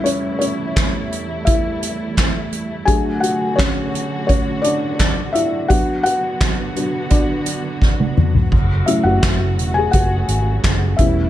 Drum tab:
CC |----------------|----------------|----------------|x---------------|
HH |x-x-x-x-x-x-x-x-|x-x-x-x-x-x-x-x-|x-x-x-x-x-x-----|--x-x-x-x-x-x-x-|
CP |----x-------x---|----x-------x---|----x-----------|----x-------x---|
SD |----o-------o---|----o-------o---|----o-------o---|----o-------o---|
T1 |----------------|----------------|-------------o--|----------------|
T2 |----------------|----------------|--------------o-|----------------|
FT |----------------|----------------|---------------o|----------------|
BD |----o---o---o---|o---o---o---o---|o---o---o---o---|o---o---o---o-o-|